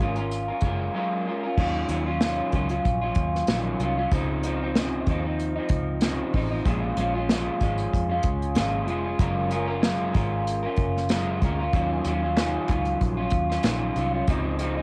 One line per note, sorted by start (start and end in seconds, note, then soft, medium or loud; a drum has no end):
0.00 0.50 G#1 medium
0.00 0.17 G#3 medium
0.00 0.17 C#4 medium
0.00 0.17 F4 medium
0.00 0.15 A#4 medium
0.16 0.49 F4 soft
0.16 0.47 A#4 medium
0.16 closed hi-hat medium
0.20 0.50 C#4 soft
0.31 closed hi-hat medium
0.48 0.62 C#4 soft
0.48 0.63 F4 soft
0.48 0.63 A#4 medium
0.61 0.88 F#1 medium
0.61 0.93 G#3 medium
0.61 0.94 C#4 medium
0.61 0.95 F4 medium
0.61 kick medium
0.61 closed hi-hat medium
0.65 0.95 A#4 medium
0.94 1.26 F#3 medium
0.94 1.24 G#3 medium
0.94 1.25 C#4 medium
0.94 1.26 F4 medium
0.94 1.27 A#4 medium
1.25 1.43 G#3 medium
1.25 1.44 C#4 medium
1.25 1.44 F4 medium
1.25 1.42 A#4 medium
1.43 1.58 C#4 soft
1.43 1.59 F4 medium
1.43 1.58 A#4 medium
1.58 1.83 D#2 loud
1.58 1.87 D#3 medium
1.58 1.88 F#3 medium
1.58 1.90 C#4 loud
1.58 1.91 F4 medium
1.58 kick loud
1.58 crash loud
1.89 2.40 D#2 loud
1.89 2.06 D#3 medium
1.89 2.07 F#3 medium
1.89 2.07 C#4 medium
1.89 2.05 F4 medium
1.89 closed hi-hat medium
2.06 2.21 F#3 soft
2.06 2.22 C#4 medium
2.06 2.21 F4 medium
2.21 2.51 D#3 medium
2.21 2.53 F#3 medium
2.21 2.53 C#4 medium
2.21 2.54 F4 medium
2.21 snare loud
2.21 closed hi-hat medium
2.52 2.78 C#2 loud
2.52 2.70 D#3 medium
2.52 2.71 F#3 medium
2.52 2.70 C#4 medium
2.52 2.68 F4 medium
2.52 kick medium
2.52 closed hi-hat medium
2.69 3.03 F#3 soft
2.69 3.02 C#4 medium
2.69 3.00 F4 medium
2.69 closed hi-hat medium
2.85 3.10 A#1 medium
2.85 kick medium
2.85 closed hi-hat medium
3.02 3.47 F#3 medium
3.02 3.48 C#4 medium
3.02 3.48 F4 medium
3.15 3.41 D#2 medium
3.15 kick loud
3.15 closed hi-hat medium
3.35 snare soft
3.47 3.74 A#1 loud
3.47 3.78 D#3 medium
3.47 3.79 F#3 medium
3.47 3.81 C#4 medium
3.47 3.81 F4 medium
3.47 snare loud
3.47 closed hi-hat medium
3.79 4.05 C2 medium
3.79 3.97 D#3 medium
3.79 3.98 F#3 medium
3.79 3.98 C#4 medium
3.79 3.96 F4 medium
3.79 closed hi-hat medium
3.97 4.12 F#3 medium
3.97 4.12 C#4 medium
3.97 4.11 F4 medium
4.11 5.03 C#2 loud
4.11 4.43 C#3 medium
4.11 4.44 F3 medium
4.11 4.44 C4 medium
4.11 4.45 D#4 loud
4.11 kick loud
4.11 closed hi-hat loud
4.43 4.61 C#3 medium
4.43 4.62 F3 medium
4.43 4.62 C4 medium
4.43 closed hi-hat medium
4.47 4.60 D#4 medium
4.61 4.76 F3 medium
4.61 4.76 C4 medium
4.61 4.75 D#4 medium
4.76 5.06 C#3 medium
4.76 5.07 F3 medium
4.76 5.08 C4 loud
4.76 5.09 D#4 medium
4.76 snare loud
4.76 closed hi-hat loud
5.06 5.58 D#2 medium
5.06 5.25 C#3 medium
5.06 5.25 F3 medium
5.06 5.26 C4 medium
5.06 kick medium
5.06 closed hi-hat medium
5.11 5.24 D#4 medium
5.25 5.58 F3 soft
5.25 5.57 C4 medium
5.25 5.55 D#4 medium
5.40 closed hi-hat medium
5.56 6.01 F3 soft
5.56 6.02 C4 soft
5.56 6.02 D#4 medium
5.69 6.21 C#2 loud
5.69 kick medium
5.69 closed hi-hat medium
6.01 6.32 C#3 medium
6.01 6.34 F3 medium
6.01 6.34 C4 loud
6.01 6.35 D#4 medium
6.01 snare loud
6.01 closed hi-hat medium
6.33 6.59 A1 loud
6.33 6.51 C#3 medium
6.33 6.52 F3 medium
6.33 6.51 C4 medium
6.33 6.50 D#4 medium
6.33 kick medium
6.33 open hi-hat soft
6.51 6.65 F3 medium
6.51 6.66 C4 medium
6.51 6.65 D#4 medium
6.65 6.91 A#1 loud
6.65 6.97 A#2 medium
6.65 6.96 F3 medium
6.65 6.97 G#3 loud
6.65 6.98 C#4 medium
6.65 6.98 F4 medium
6.65 kick loud
6.65 closed hi-hat loud
6.97 7.48 A#1 loud
6.97 7.15 F3 medium
6.97 7.15 G#3 medium
6.97 7.15 C#4 medium
6.97 7.13 F4 medium
6.97 closed hi-hat medium
7.14 7.30 G#3 medium
7.14 7.30 C#4 medium
7.14 7.29 F4 medium
7.29 7.61 A#2 medium
7.29 7.59 F3 medium
7.29 7.60 G#3 loud
7.29 7.61 C#4 loud
7.29 7.62 F4 loud
7.29 snare loud
7.29 closed hi-hat loud
7.60 7.86 G#1 loud
7.60 8.09 F3 medium
7.60 8.10 G#3 medium
7.60 8.10 C#4 medium
7.60 8.08 F4 medium
7.60 kick medium
7.60 closed hi-hat medium
7.78 closed hi-hat medium
7.93 8.18 F2 medium
7.93 kick medium
7.93 closed hi-hat medium
8.10 8.56 G#3 soft
8.10 8.56 C#4 medium
8.10 8.56 F4 medium
8.23 8.57 C#2 loud
8.23 kick loud
8.23 closed hi-hat medium
8.42 closed hi-hat medium
8.55 8.87 G#1 medium
8.55 8.87 A#2 medium
8.55 8.86 F3 medium
8.55 8.87 G#3 medium
8.55 8.88 C#4 medium
8.55 8.88 F4 loud
8.55 snare loud
8.55 closed hi-hat medium
8.87 9.13 F1 medium
8.87 9.05 F3 medium
8.87 9.05 G#3 medium
8.87 9.05 C#4 medium
8.87 9.03 F4 medium
8.87 closed hi-hat medium
9.04 9.19 G#3 medium
9.04 9.20 C#4 medium
9.04 9.19 F4 medium
9.19 10.11 F#1 loud
9.19 9.51 F#3 medium
9.19 9.49 G#3 medium
9.19 9.50 C#4 medium
9.19 9.51 F4 loud
9.19 9.52 A#4 medium
9.19 kick loud
9.19 closed hi-hat loud
9.50 9.68 G#3 medium
9.50 9.69 C#4 medium
9.50 9.68 F4 medium
9.50 9.66 A#4 medium
9.50 closed hi-hat medium
9.68 9.82 C#4 medium
9.68 9.82 F4 medium
9.68 9.82 A#4 medium
9.82 10.14 F#3 medium
9.82 10.12 G#3 medium
9.82 10.13 C#4 loud
9.82 10.14 F4 medium
9.82 10.15 A#4 loud
9.82 snare loud
9.82 closed hi-hat loud
10.13 10.66 G#1 medium
10.13 10.63 G#3 medium
10.13 10.64 C#4 medium
10.13 10.64 F4 medium
10.13 10.62 A#4 medium
10.13 kick loud
10.13 closed hi-hat medium
10.47 closed hi-hat medium
10.63 11.10 C#4 medium
10.63 11.11 F4 medium
10.63 11.10 A#4 medium
10.77 11.44 F#1 medium
10.77 kick loud
10.77 closed hi-hat medium
10.97 snare soft
11.09 11.42 F#3 medium
11.09 11.40 G#3 medium
11.09 11.42 C#4 medium
11.09 11.43 F4 medium
11.09 11.43 A#4 medium
11.09 snare loud
11.09 closed hi-hat medium
11.42 11.67 D2 medium
11.42 11.59 G#3 medium
11.42 11.60 C#4 medium
11.42 11.59 F4 medium
11.42 11.58 A#4 medium
11.42 kick medium
11.42 closed hi-hat medium
11.59 11.74 C#4 soft
11.59 11.74 F4 medium
11.59 11.74 A#4 medium
11.73 11.99 D#2 loud
11.73 12.03 D#3 medium
11.73 12.05 F#3 medium
11.73 12.06 C#4 loud
11.73 12.07 F4 loud
11.73 kick loud
11.73 closed hi-hat medium
12.04 12.56 D#2 loud
12.04 12.22 D#3 medium
12.04 12.23 F#3 medium
12.04 12.23 C#4 medium
12.04 12.21 F4 medium
12.04 closed hi-hat medium
12.22 12.36 F#3 medium
12.22 12.37 C#4 medium
12.22 12.37 F4 medium
12.36 12.67 D#3 medium
12.36 12.68 F#3 medium
12.36 12.69 C#4 medium
12.36 12.70 F4 loud
12.36 snare loud
12.36 clap medium
12.36 closed hi-hat loud
12.68 12.94 C#2 medium
12.68 13.18 D#3 medium
12.68 13.18 F#3 medium
12.68 13.18 C#4 medium
12.68 13.16 F4 medium
12.68 kick medium
12.68 clap medium
12.68 closed hi-hat medium
12.85 closed hi-hat medium
13.01 13.27 A#1 loud
13.01 kick medium
13.01 closed hi-hat medium
13.17 13.51 F#3 soft
13.17 13.51 C#4 medium
13.17 13.49 F4 medium
13.30 13.58 D#2 loud
13.30 kick loud
13.30 closed hi-hat medium
13.50 13.64 F#3 soft
13.50 13.65 C#4 medium
13.50 13.64 F4 medium
13.50 snare soft
13.63 13.90 A#1 loud
13.63 13.95 D#3 medium
13.63 13.96 F#3 loud
13.63 13.97 C#4 medium
13.63 13.97 F4 loud
13.63 snare loud
13.63 clap medium
13.63 closed hi-hat medium
13.96 14.22 C2 loud
13.96 14.14 D#3 medium
13.96 14.14 F#3 medium
13.96 14.14 C#4 medium
13.96 14.12 F4 medium
13.96 closed hi-hat medium
14.13 14.28 F#3 soft
14.13 14.29 C#4 medium
14.13 14.28 F4 medium
14.27 14.82 C#2 loud
14.27 14.58 C#3 medium
14.27 14.60 F3 medium
14.27 14.61 C4 loud
14.27 14.61 D#4 loud
14.27 kick loud
14.27 closed hi-hat medium
14.59 14.77 C#3 medium
14.59 14.78 F3 medium
14.59 14.78 C4 medium
14.59 closed hi-hat medium
14.63 14.76 D#4 medium
14.77 14.82 C4 medium
14.77 14.82 D#4 medium